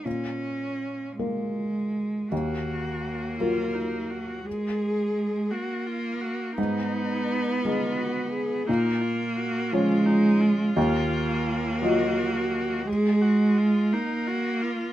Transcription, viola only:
X:1
M:6/8
L:1/8
Q:3/8=57
K:Ebm
V:1 name="Viola"
z6 | G3 F E G | A3 G F G | E3 F G A |
E F G F E F- | F3 G3 | A G F E G F |]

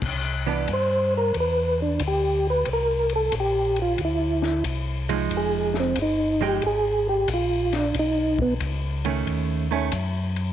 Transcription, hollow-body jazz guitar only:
X:1
M:4/4
L:1/8
Q:"Swing" 1/4=91
K:Flyd
V:1 name="Hollow-body jazz guitar"
z [E,B,D] z6 | z6 z [F,_A,_E]- | [F,_A,_E]2 z [F,A,EG] z4 | z3 [^D,A,^C]2 [D,A,C] z2 |]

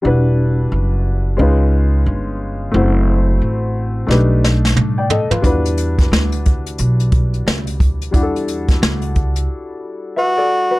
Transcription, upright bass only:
X:1
M:4/4
L:1/16
Q:"Swing 16ths" 1/4=89
K:Edor
V:1 name="Upright bass" clef=bass
E,,,4 F,,,4 C,,4 G,,,4 | F,,,4 A,,,4 B,,,4 A,,3 z | E,,4 D,,4 B,,,4 C,,2 D,,2 | E,,4 C,,4 z8 |]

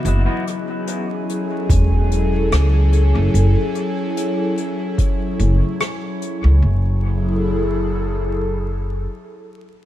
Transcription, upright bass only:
X:1
M:4/4
L:1/16
Q:"Swing 16ths" 1/4=73
K:F#dor
V:1 name="Upright bass" clef=bass
F,,, z6 z E,,,4 C,,3 F,,, | F,,, z8 z F,,, z4 C,, | F,,,12 z4 |]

